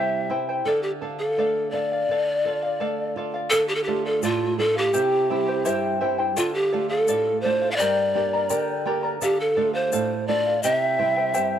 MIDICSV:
0, 0, Header, 1, 5, 480
1, 0, Start_track
1, 0, Key_signature, -1, "minor"
1, 0, Tempo, 713436
1, 437, Time_signature, 2, 2, 24, 8
1, 7798, End_track
2, 0, Start_track
2, 0, Title_t, "Charango"
2, 0, Program_c, 0, 24
2, 0, Note_on_c, 0, 64, 78
2, 0, Note_on_c, 0, 67, 74
2, 0, Note_on_c, 0, 72, 75
2, 0, Note_on_c, 0, 76, 68
2, 0, Note_on_c, 0, 79, 70
2, 192, Note_off_c, 0, 76, 0
2, 197, Note_off_c, 0, 72, 0
2, 198, Note_off_c, 0, 64, 0
2, 199, Note_off_c, 0, 79, 0
2, 200, Note_on_c, 0, 76, 52
2, 201, Note_off_c, 0, 67, 0
2, 205, Note_on_c, 0, 72, 61
2, 207, Note_on_c, 0, 64, 60
2, 207, Note_on_c, 0, 79, 60
2, 318, Note_off_c, 0, 76, 0
2, 320, Note_off_c, 0, 79, 0
2, 321, Note_off_c, 0, 64, 0
2, 321, Note_off_c, 0, 72, 0
2, 328, Note_on_c, 0, 79, 46
2, 330, Note_on_c, 0, 72, 43
2, 333, Note_on_c, 0, 64, 41
2, 442, Note_off_c, 0, 79, 0
2, 444, Note_off_c, 0, 72, 0
2, 445, Note_off_c, 0, 64, 0
2, 449, Note_on_c, 0, 69, 66
2, 453, Note_on_c, 0, 77, 68
2, 455, Note_on_c, 0, 74, 69
2, 674, Note_off_c, 0, 69, 0
2, 680, Note_off_c, 0, 74, 0
2, 682, Note_off_c, 0, 77, 0
2, 682, Note_on_c, 0, 69, 54
2, 688, Note_on_c, 0, 74, 51
2, 690, Note_on_c, 0, 77, 60
2, 799, Note_off_c, 0, 77, 0
2, 800, Note_off_c, 0, 69, 0
2, 803, Note_off_c, 0, 74, 0
2, 807, Note_on_c, 0, 77, 42
2, 814, Note_on_c, 0, 74, 38
2, 923, Note_off_c, 0, 77, 0
2, 924, Note_off_c, 0, 74, 0
2, 932, Note_on_c, 0, 74, 78
2, 933, Note_on_c, 0, 69, 71
2, 940, Note_on_c, 0, 77, 79
2, 1159, Note_off_c, 0, 69, 0
2, 1164, Note_off_c, 0, 74, 0
2, 1167, Note_on_c, 0, 69, 49
2, 1170, Note_off_c, 0, 77, 0
2, 1172, Note_on_c, 0, 74, 51
2, 1178, Note_on_c, 0, 77, 56
2, 1283, Note_off_c, 0, 77, 0
2, 1284, Note_off_c, 0, 69, 0
2, 1286, Note_off_c, 0, 74, 0
2, 1291, Note_on_c, 0, 77, 46
2, 1299, Note_on_c, 0, 74, 38
2, 1406, Note_off_c, 0, 77, 0
2, 1410, Note_off_c, 0, 74, 0
2, 1419, Note_on_c, 0, 69, 60
2, 1419, Note_on_c, 0, 74, 64
2, 1424, Note_on_c, 0, 77, 74
2, 1641, Note_off_c, 0, 69, 0
2, 1647, Note_off_c, 0, 74, 0
2, 1649, Note_on_c, 0, 69, 51
2, 1652, Note_off_c, 0, 77, 0
2, 1655, Note_on_c, 0, 74, 48
2, 1663, Note_on_c, 0, 77, 55
2, 1759, Note_off_c, 0, 77, 0
2, 1765, Note_off_c, 0, 69, 0
2, 1767, Note_on_c, 0, 77, 49
2, 1768, Note_off_c, 0, 74, 0
2, 1781, Note_on_c, 0, 74, 40
2, 1881, Note_off_c, 0, 74, 0
2, 1882, Note_off_c, 0, 77, 0
2, 1884, Note_on_c, 0, 69, 73
2, 1889, Note_on_c, 0, 74, 83
2, 1890, Note_on_c, 0, 77, 88
2, 2123, Note_off_c, 0, 69, 0
2, 2126, Note_off_c, 0, 74, 0
2, 2126, Note_off_c, 0, 77, 0
2, 2133, Note_on_c, 0, 69, 59
2, 2135, Note_on_c, 0, 74, 61
2, 2140, Note_on_c, 0, 77, 62
2, 2238, Note_off_c, 0, 77, 0
2, 2246, Note_on_c, 0, 77, 48
2, 2248, Note_off_c, 0, 69, 0
2, 2248, Note_off_c, 0, 74, 0
2, 2256, Note_on_c, 0, 74, 44
2, 2359, Note_off_c, 0, 74, 0
2, 2361, Note_off_c, 0, 77, 0
2, 2363, Note_on_c, 0, 69, 65
2, 2367, Note_on_c, 0, 74, 68
2, 2369, Note_on_c, 0, 77, 71
2, 2597, Note_off_c, 0, 69, 0
2, 2599, Note_off_c, 0, 74, 0
2, 2604, Note_off_c, 0, 77, 0
2, 2605, Note_on_c, 0, 69, 57
2, 2607, Note_on_c, 0, 74, 56
2, 2613, Note_on_c, 0, 77, 56
2, 2717, Note_off_c, 0, 77, 0
2, 2724, Note_off_c, 0, 69, 0
2, 2725, Note_off_c, 0, 74, 0
2, 2725, Note_on_c, 0, 77, 46
2, 2734, Note_on_c, 0, 74, 37
2, 2841, Note_off_c, 0, 74, 0
2, 2844, Note_off_c, 0, 77, 0
2, 2846, Note_on_c, 0, 69, 78
2, 2849, Note_on_c, 0, 74, 79
2, 2851, Note_on_c, 0, 77, 73
2, 3077, Note_off_c, 0, 69, 0
2, 3082, Note_off_c, 0, 74, 0
2, 3085, Note_on_c, 0, 69, 54
2, 3087, Note_off_c, 0, 77, 0
2, 3090, Note_on_c, 0, 74, 54
2, 3095, Note_on_c, 0, 77, 57
2, 3193, Note_off_c, 0, 77, 0
2, 3200, Note_off_c, 0, 74, 0
2, 3201, Note_on_c, 0, 77, 45
2, 3204, Note_off_c, 0, 69, 0
2, 3208, Note_on_c, 0, 74, 36
2, 3317, Note_off_c, 0, 74, 0
2, 3317, Note_off_c, 0, 77, 0
2, 3319, Note_on_c, 0, 67, 74
2, 3320, Note_on_c, 0, 76, 65
2, 3323, Note_on_c, 0, 64, 78
2, 3325, Note_on_c, 0, 72, 73
2, 3325, Note_on_c, 0, 79, 73
2, 3558, Note_off_c, 0, 64, 0
2, 3559, Note_off_c, 0, 76, 0
2, 3561, Note_off_c, 0, 67, 0
2, 3564, Note_off_c, 0, 72, 0
2, 3564, Note_off_c, 0, 79, 0
2, 3567, Note_on_c, 0, 64, 60
2, 3567, Note_on_c, 0, 76, 54
2, 3572, Note_on_c, 0, 79, 64
2, 3573, Note_on_c, 0, 72, 61
2, 3677, Note_off_c, 0, 79, 0
2, 3683, Note_off_c, 0, 72, 0
2, 3685, Note_off_c, 0, 64, 0
2, 3685, Note_off_c, 0, 76, 0
2, 3685, Note_on_c, 0, 79, 47
2, 3691, Note_on_c, 0, 72, 45
2, 3696, Note_on_c, 0, 64, 41
2, 3798, Note_off_c, 0, 64, 0
2, 3799, Note_off_c, 0, 79, 0
2, 3800, Note_on_c, 0, 67, 82
2, 3802, Note_off_c, 0, 72, 0
2, 3802, Note_on_c, 0, 76, 88
2, 3806, Note_on_c, 0, 64, 93
2, 3807, Note_on_c, 0, 79, 94
2, 3810, Note_on_c, 0, 72, 92
2, 4032, Note_off_c, 0, 76, 0
2, 4036, Note_off_c, 0, 64, 0
2, 4037, Note_off_c, 0, 72, 0
2, 4039, Note_off_c, 0, 79, 0
2, 4040, Note_on_c, 0, 76, 59
2, 4042, Note_off_c, 0, 67, 0
2, 4044, Note_on_c, 0, 64, 58
2, 4045, Note_on_c, 0, 72, 63
2, 4047, Note_on_c, 0, 79, 63
2, 4152, Note_off_c, 0, 79, 0
2, 4157, Note_off_c, 0, 72, 0
2, 4160, Note_on_c, 0, 79, 50
2, 4162, Note_off_c, 0, 64, 0
2, 4162, Note_off_c, 0, 76, 0
2, 4165, Note_on_c, 0, 72, 47
2, 4170, Note_on_c, 0, 64, 45
2, 4279, Note_off_c, 0, 64, 0
2, 4280, Note_off_c, 0, 72, 0
2, 4282, Note_off_c, 0, 79, 0
2, 4282, Note_on_c, 0, 69, 71
2, 4283, Note_on_c, 0, 74, 71
2, 4287, Note_on_c, 0, 77, 73
2, 4512, Note_off_c, 0, 69, 0
2, 4515, Note_off_c, 0, 74, 0
2, 4520, Note_on_c, 0, 69, 58
2, 4521, Note_off_c, 0, 77, 0
2, 4523, Note_on_c, 0, 74, 59
2, 4529, Note_on_c, 0, 77, 66
2, 4637, Note_off_c, 0, 77, 0
2, 4642, Note_off_c, 0, 69, 0
2, 4643, Note_off_c, 0, 74, 0
2, 4645, Note_on_c, 0, 77, 50
2, 4657, Note_on_c, 0, 74, 40
2, 4760, Note_off_c, 0, 74, 0
2, 4763, Note_on_c, 0, 69, 75
2, 4764, Note_off_c, 0, 77, 0
2, 4768, Note_on_c, 0, 74, 79
2, 4771, Note_on_c, 0, 77, 86
2, 4995, Note_off_c, 0, 69, 0
2, 5002, Note_off_c, 0, 74, 0
2, 5003, Note_on_c, 0, 69, 53
2, 5007, Note_off_c, 0, 77, 0
2, 5010, Note_on_c, 0, 74, 60
2, 5015, Note_on_c, 0, 77, 62
2, 5117, Note_off_c, 0, 77, 0
2, 5123, Note_off_c, 0, 69, 0
2, 5125, Note_on_c, 0, 77, 53
2, 5126, Note_off_c, 0, 74, 0
2, 5133, Note_on_c, 0, 74, 43
2, 5241, Note_off_c, 0, 74, 0
2, 5243, Note_off_c, 0, 77, 0
2, 5243, Note_on_c, 0, 67, 69
2, 5245, Note_on_c, 0, 79, 67
2, 5248, Note_on_c, 0, 82, 80
2, 5249, Note_on_c, 0, 74, 79
2, 5251, Note_on_c, 0, 70, 65
2, 5472, Note_off_c, 0, 79, 0
2, 5477, Note_off_c, 0, 70, 0
2, 5480, Note_off_c, 0, 74, 0
2, 5480, Note_on_c, 0, 79, 55
2, 5482, Note_off_c, 0, 67, 0
2, 5483, Note_off_c, 0, 82, 0
2, 5485, Note_on_c, 0, 70, 58
2, 5489, Note_on_c, 0, 74, 57
2, 5491, Note_on_c, 0, 82, 54
2, 5599, Note_off_c, 0, 82, 0
2, 5601, Note_off_c, 0, 79, 0
2, 5603, Note_off_c, 0, 70, 0
2, 5605, Note_off_c, 0, 74, 0
2, 5607, Note_on_c, 0, 82, 50
2, 5613, Note_on_c, 0, 74, 42
2, 5619, Note_on_c, 0, 70, 36
2, 5712, Note_off_c, 0, 82, 0
2, 5713, Note_off_c, 0, 70, 0
2, 5713, Note_off_c, 0, 74, 0
2, 5719, Note_on_c, 0, 79, 77
2, 5720, Note_on_c, 0, 67, 66
2, 5720, Note_on_c, 0, 82, 81
2, 5721, Note_on_c, 0, 70, 69
2, 5721, Note_on_c, 0, 74, 78
2, 5951, Note_off_c, 0, 79, 0
2, 5956, Note_off_c, 0, 70, 0
2, 5958, Note_off_c, 0, 74, 0
2, 5959, Note_on_c, 0, 79, 61
2, 5960, Note_off_c, 0, 67, 0
2, 5960, Note_off_c, 0, 82, 0
2, 5964, Note_on_c, 0, 70, 62
2, 5966, Note_on_c, 0, 74, 65
2, 5968, Note_on_c, 0, 82, 70
2, 6068, Note_off_c, 0, 82, 0
2, 6075, Note_off_c, 0, 74, 0
2, 6076, Note_off_c, 0, 70, 0
2, 6076, Note_on_c, 0, 82, 49
2, 6079, Note_off_c, 0, 79, 0
2, 6083, Note_on_c, 0, 74, 44
2, 6084, Note_on_c, 0, 70, 43
2, 6194, Note_off_c, 0, 74, 0
2, 6196, Note_off_c, 0, 70, 0
2, 6198, Note_off_c, 0, 82, 0
2, 6199, Note_on_c, 0, 69, 67
2, 6202, Note_on_c, 0, 74, 65
2, 6208, Note_on_c, 0, 77, 79
2, 6424, Note_off_c, 0, 69, 0
2, 6429, Note_off_c, 0, 74, 0
2, 6432, Note_on_c, 0, 69, 51
2, 6433, Note_off_c, 0, 77, 0
2, 6438, Note_on_c, 0, 74, 54
2, 6441, Note_on_c, 0, 77, 55
2, 6543, Note_off_c, 0, 77, 0
2, 6551, Note_on_c, 0, 77, 49
2, 6552, Note_off_c, 0, 74, 0
2, 6555, Note_off_c, 0, 69, 0
2, 6560, Note_on_c, 0, 74, 39
2, 6671, Note_off_c, 0, 74, 0
2, 6675, Note_off_c, 0, 77, 0
2, 6678, Note_on_c, 0, 69, 70
2, 6679, Note_on_c, 0, 74, 86
2, 6681, Note_on_c, 0, 77, 80
2, 6911, Note_off_c, 0, 69, 0
2, 6913, Note_off_c, 0, 74, 0
2, 6917, Note_off_c, 0, 77, 0
2, 6919, Note_on_c, 0, 69, 55
2, 6921, Note_on_c, 0, 74, 61
2, 6925, Note_on_c, 0, 77, 62
2, 7033, Note_off_c, 0, 77, 0
2, 7037, Note_off_c, 0, 69, 0
2, 7039, Note_off_c, 0, 74, 0
2, 7041, Note_on_c, 0, 77, 52
2, 7052, Note_on_c, 0, 74, 44
2, 7154, Note_off_c, 0, 74, 0
2, 7156, Note_off_c, 0, 77, 0
2, 7157, Note_on_c, 0, 67, 68
2, 7159, Note_on_c, 0, 76, 72
2, 7160, Note_on_c, 0, 64, 70
2, 7163, Note_on_c, 0, 72, 69
2, 7164, Note_on_c, 0, 79, 75
2, 7380, Note_off_c, 0, 76, 0
2, 7386, Note_off_c, 0, 72, 0
2, 7388, Note_on_c, 0, 76, 59
2, 7389, Note_off_c, 0, 64, 0
2, 7390, Note_off_c, 0, 79, 0
2, 7394, Note_on_c, 0, 72, 57
2, 7395, Note_off_c, 0, 67, 0
2, 7397, Note_on_c, 0, 64, 56
2, 7398, Note_on_c, 0, 79, 68
2, 7505, Note_off_c, 0, 79, 0
2, 7510, Note_off_c, 0, 72, 0
2, 7511, Note_off_c, 0, 76, 0
2, 7512, Note_off_c, 0, 64, 0
2, 7513, Note_on_c, 0, 79, 47
2, 7518, Note_on_c, 0, 72, 45
2, 7520, Note_on_c, 0, 64, 36
2, 7623, Note_off_c, 0, 64, 0
2, 7623, Note_off_c, 0, 79, 0
2, 7625, Note_off_c, 0, 72, 0
2, 7628, Note_on_c, 0, 76, 81
2, 7629, Note_on_c, 0, 67, 72
2, 7631, Note_on_c, 0, 64, 76
2, 7632, Note_on_c, 0, 79, 90
2, 7633, Note_on_c, 0, 72, 79
2, 7798, Note_off_c, 0, 64, 0
2, 7798, Note_off_c, 0, 67, 0
2, 7798, Note_off_c, 0, 72, 0
2, 7798, Note_off_c, 0, 76, 0
2, 7798, Note_off_c, 0, 79, 0
2, 7798, End_track
3, 0, Start_track
3, 0, Title_t, "Pan flute"
3, 0, Program_c, 1, 75
3, 0, Note_on_c, 1, 76, 81
3, 202, Note_off_c, 1, 76, 0
3, 442, Note_on_c, 1, 69, 78
3, 552, Note_off_c, 1, 69, 0
3, 557, Note_on_c, 1, 67, 66
3, 611, Note_off_c, 1, 67, 0
3, 801, Note_on_c, 1, 69, 76
3, 1147, Note_on_c, 1, 74, 87
3, 1157, Note_off_c, 1, 69, 0
3, 2116, Note_off_c, 1, 74, 0
3, 2354, Note_on_c, 1, 69, 93
3, 2470, Note_off_c, 1, 69, 0
3, 2478, Note_on_c, 1, 67, 85
3, 2525, Note_on_c, 1, 69, 69
3, 2535, Note_off_c, 1, 67, 0
3, 2580, Note_on_c, 1, 67, 79
3, 2590, Note_off_c, 1, 69, 0
3, 2725, Note_off_c, 1, 67, 0
3, 2729, Note_on_c, 1, 69, 85
3, 2852, Note_on_c, 1, 65, 83
3, 2862, Note_off_c, 1, 69, 0
3, 3088, Note_on_c, 1, 69, 90
3, 3098, Note_off_c, 1, 65, 0
3, 3215, Note_on_c, 1, 67, 80
3, 3225, Note_off_c, 1, 69, 0
3, 4049, Note_off_c, 1, 67, 0
3, 4286, Note_on_c, 1, 65, 80
3, 4400, Note_on_c, 1, 67, 75
3, 4411, Note_off_c, 1, 65, 0
3, 4633, Note_off_c, 1, 67, 0
3, 4637, Note_on_c, 1, 69, 85
3, 4974, Note_off_c, 1, 69, 0
3, 4987, Note_on_c, 1, 72, 86
3, 5174, Note_off_c, 1, 72, 0
3, 5189, Note_on_c, 1, 77, 73
3, 5223, Note_on_c, 1, 74, 100
3, 5233, Note_off_c, 1, 77, 0
3, 5951, Note_off_c, 1, 74, 0
3, 6210, Note_on_c, 1, 67, 82
3, 6326, Note_on_c, 1, 69, 76
3, 6336, Note_off_c, 1, 67, 0
3, 6555, Note_on_c, 1, 72, 88
3, 6565, Note_off_c, 1, 69, 0
3, 6912, Note_on_c, 1, 74, 86
3, 6923, Note_off_c, 1, 72, 0
3, 7151, Note_on_c, 1, 75, 95
3, 7161, Note_off_c, 1, 74, 0
3, 7238, Note_off_c, 1, 75, 0
3, 7238, Note_on_c, 1, 76, 95
3, 7798, Note_off_c, 1, 76, 0
3, 7798, End_track
4, 0, Start_track
4, 0, Title_t, "Nylon-string guitar"
4, 0, Program_c, 2, 24
4, 0, Note_on_c, 2, 48, 58
4, 0, Note_on_c, 2, 55, 49
4, 192, Note_off_c, 2, 55, 0
4, 199, Note_on_c, 2, 64, 47
4, 413, Note_off_c, 2, 48, 0
4, 431, Note_off_c, 2, 64, 0
4, 441, Note_on_c, 2, 50, 61
4, 685, Note_on_c, 2, 62, 49
4, 915, Note_off_c, 2, 62, 0
4, 928, Note_on_c, 2, 57, 48
4, 1157, Note_off_c, 2, 57, 0
4, 1164, Note_on_c, 2, 62, 49
4, 1375, Note_off_c, 2, 50, 0
4, 1395, Note_off_c, 2, 62, 0
4, 1405, Note_on_c, 2, 50, 58
4, 1651, Note_on_c, 2, 65, 46
4, 1879, Note_off_c, 2, 65, 0
4, 1886, Note_on_c, 2, 57, 50
4, 2117, Note_off_c, 2, 57, 0
4, 2126, Note_on_c, 2, 65, 47
4, 2338, Note_off_c, 2, 50, 0
4, 2357, Note_off_c, 2, 65, 0
4, 2369, Note_on_c, 2, 50, 61
4, 2608, Note_on_c, 2, 57, 46
4, 2610, Note_on_c, 2, 62, 43
4, 2611, Note_on_c, 2, 65, 53
4, 2832, Note_off_c, 2, 50, 0
4, 2844, Note_on_c, 2, 45, 66
4, 2990, Note_off_c, 2, 57, 0
4, 2991, Note_off_c, 2, 62, 0
4, 2992, Note_off_c, 2, 65, 0
4, 3084, Note_on_c, 2, 57, 48
4, 3087, Note_on_c, 2, 62, 45
4, 3091, Note_on_c, 2, 65, 51
4, 3276, Note_off_c, 2, 57, 0
4, 3277, Note_off_c, 2, 62, 0
4, 3280, Note_off_c, 2, 65, 0
4, 3310, Note_off_c, 2, 45, 0
4, 3329, Note_on_c, 2, 48, 65
4, 3568, Note_on_c, 2, 55, 47
4, 3571, Note_on_c, 2, 60, 43
4, 3575, Note_on_c, 2, 64, 52
4, 3792, Note_off_c, 2, 48, 0
4, 3812, Note_on_c, 2, 43, 68
4, 3950, Note_off_c, 2, 55, 0
4, 3952, Note_off_c, 2, 60, 0
4, 3954, Note_off_c, 2, 64, 0
4, 4048, Note_on_c, 2, 55, 49
4, 4051, Note_on_c, 2, 60, 43
4, 4055, Note_on_c, 2, 64, 51
4, 4238, Note_off_c, 2, 55, 0
4, 4240, Note_off_c, 2, 60, 0
4, 4243, Note_off_c, 2, 64, 0
4, 4274, Note_off_c, 2, 43, 0
4, 4289, Note_on_c, 2, 50, 65
4, 4531, Note_on_c, 2, 57, 50
4, 4533, Note_on_c, 2, 62, 44
4, 4535, Note_on_c, 2, 65, 54
4, 4752, Note_off_c, 2, 50, 0
4, 4768, Note_on_c, 2, 45, 65
4, 4912, Note_off_c, 2, 57, 0
4, 4912, Note_off_c, 2, 62, 0
4, 4914, Note_off_c, 2, 65, 0
4, 5012, Note_on_c, 2, 57, 47
4, 5016, Note_on_c, 2, 62, 44
4, 5019, Note_on_c, 2, 65, 51
4, 5200, Note_off_c, 2, 57, 0
4, 5202, Note_off_c, 2, 62, 0
4, 5204, Note_off_c, 2, 65, 0
4, 5230, Note_off_c, 2, 45, 0
4, 5251, Note_on_c, 2, 43, 60
4, 5482, Note_on_c, 2, 58, 45
4, 5485, Note_on_c, 2, 62, 43
4, 5490, Note_on_c, 2, 67, 52
4, 5712, Note_off_c, 2, 43, 0
4, 5721, Note_on_c, 2, 50, 58
4, 5865, Note_off_c, 2, 58, 0
4, 5868, Note_off_c, 2, 62, 0
4, 5868, Note_off_c, 2, 67, 0
4, 5957, Note_on_c, 2, 58, 46
4, 5961, Note_on_c, 2, 62, 43
4, 5966, Note_on_c, 2, 67, 47
4, 6150, Note_off_c, 2, 58, 0
4, 6152, Note_off_c, 2, 62, 0
4, 6155, Note_off_c, 2, 67, 0
4, 6186, Note_off_c, 2, 50, 0
4, 6200, Note_on_c, 2, 50, 60
4, 6436, Note_on_c, 2, 57, 49
4, 6442, Note_on_c, 2, 62, 43
4, 6443, Note_on_c, 2, 65, 51
4, 6664, Note_off_c, 2, 50, 0
4, 6683, Note_on_c, 2, 45, 62
4, 6820, Note_off_c, 2, 57, 0
4, 6823, Note_off_c, 2, 65, 0
4, 6824, Note_off_c, 2, 62, 0
4, 6919, Note_on_c, 2, 57, 46
4, 6923, Note_on_c, 2, 62, 44
4, 6926, Note_on_c, 2, 65, 49
4, 7110, Note_off_c, 2, 57, 0
4, 7112, Note_off_c, 2, 62, 0
4, 7114, Note_off_c, 2, 65, 0
4, 7144, Note_off_c, 2, 45, 0
4, 7161, Note_on_c, 2, 48, 61
4, 7392, Note_on_c, 2, 55, 45
4, 7396, Note_on_c, 2, 60, 43
4, 7397, Note_on_c, 2, 64, 52
4, 7622, Note_off_c, 2, 48, 0
4, 7643, Note_on_c, 2, 43, 62
4, 7775, Note_off_c, 2, 55, 0
4, 7776, Note_off_c, 2, 60, 0
4, 7778, Note_off_c, 2, 64, 0
4, 7798, Note_off_c, 2, 43, 0
4, 7798, End_track
5, 0, Start_track
5, 0, Title_t, "Drums"
5, 2364, Note_on_c, 9, 82, 90
5, 2431, Note_off_c, 9, 82, 0
5, 2844, Note_on_c, 9, 82, 80
5, 2911, Note_off_c, 9, 82, 0
5, 3323, Note_on_c, 9, 82, 84
5, 3390, Note_off_c, 9, 82, 0
5, 3805, Note_on_c, 9, 82, 85
5, 3872, Note_off_c, 9, 82, 0
5, 4286, Note_on_c, 9, 82, 90
5, 4353, Note_off_c, 9, 82, 0
5, 4762, Note_on_c, 9, 82, 86
5, 4829, Note_off_c, 9, 82, 0
5, 5245, Note_on_c, 9, 82, 90
5, 5312, Note_off_c, 9, 82, 0
5, 5718, Note_on_c, 9, 82, 85
5, 5785, Note_off_c, 9, 82, 0
5, 6200, Note_on_c, 9, 82, 76
5, 6267, Note_off_c, 9, 82, 0
5, 6677, Note_on_c, 9, 82, 79
5, 6744, Note_off_c, 9, 82, 0
5, 7153, Note_on_c, 9, 82, 95
5, 7221, Note_off_c, 9, 82, 0
5, 7632, Note_on_c, 9, 82, 83
5, 7699, Note_off_c, 9, 82, 0
5, 7798, End_track
0, 0, End_of_file